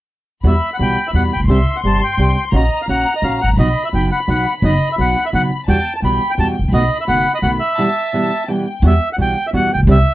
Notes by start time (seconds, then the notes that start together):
0.43 E2 B2 E3 G3 B3 F#4 E5 B5
0.74 F#5
0.79 B1 B2 E3 G3 B3 F#4 G5
1.07 E5
1.13 E2 B2 E3 G3 B3 F#4 F#5
1.33 A1 G5
1.40 A#1
1.44 B1 C2
1.48 C3 G3 C4 D4 G4 E5 C6
1.76 F#5
1.84 G1 C3 G3 C4 D4 G4 A5
2.04 G5
2.17 C2 C3 G3 C4 D4 G4 G5
2.52 A#1 A#3 C#4 F#4 D#5 A#5
2.82 F5
2.88 A#1 A#3 C#4 F#4 F#5
3.16 D#5
3.22 A#1 A#3 C#4 F#4 F5
3.42 G#1 F#5
3.49 A1
3.53 A#1
3.57 B1 B2 F#3 B3 D#4 F#4 D#5 B5
3.85 E5
3.93 F#1 B2 F#3 B3 D#4 F#4 G5
4.12 F#5
4.27 B1 B2 F#3 B3 D#4 F#4 F#5
4.62 F#1 B2 F#3 B3 D#4 F#4 D#5
4.92 E5
4.98 B1 B2 F#3 B3 D#4 F#4 F#5
5.26 E5
5.32 F#1 B2 F#3 B3 D#4 F#4 F#5
5.67 E2 B2 E3 G3 B3 F#4 G5 A5
5.96 A5
6.02 B1 B2 E3 G3 B3 F#4 G5 B5
6.31 G5
6.38 E2 B2 E3 G3 B3 F#4 A5
6.59 G#1
6.64 A1
6.68 A#1 B1
6.72 B2 D#3 A3 B3 F#4 D#5 B5
7.01 E5
7.07 F#1 B2 D#3 A3 B3 F#4 F#5
7.35 D#5
7.42 B1 B2 D#3 A3 B3 F#4 F#5
7.60 E5
7.78 B2 E3 G3 B3 E4 A5
8.13 B2 E3 G3 B3 E4
8.48 B2 E3 G3 B3 E4 G5
8.82 E2 B2 E3 G3 B3 F#4
8.87 E5
9.13 F#5
9.18 B1 B2 E3 G3 B3 F#4 G5
9.47 E5
9.53 E2 B2 E3 G3 B3 F#4 F#5
9.74 A1 G5
9.79 A#1
9.83 B1
9.87 C2 C3 G3 C4 D4 G4 E5